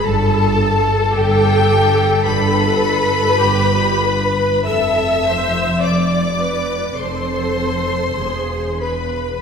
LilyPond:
<<
  \new Staff \with { instrumentName = "Violin section" } { \time 4/4 \key g \mixolydian \tempo 4 = 52 a''4 g''4 b''2 | e'''4 d'''4 c'''4. b''8 | }
  \new Staff \with { instrumentName = "Violin section" } { \time 4/4 \key g \mixolydian a'4 g'4 b'2 | e''4 d''4 c''4. b'8 | }
  \new Staff \with { instrumentName = "Viola section" } { \time 4/4 \key g \mixolydian a'2. g'8 b'8 | a'8 c''8 d''8 b'8 a'4 gis'8 b'8 | }
  \new Staff \with { instrumentName = "Cello section" } { \clef bass \time 4/4 \key g \mixolydian g,4 g,4 g,4 g,4 | f,2 f,4 e,4 | }
  \new Staff \with { instrumentName = "Double bass section" } { \clef bass \time 4/4 \key g \mixolydian g,,4 g,,4 g,,4 g,,4 | f,,2 f,,4 e,,4 | }
>>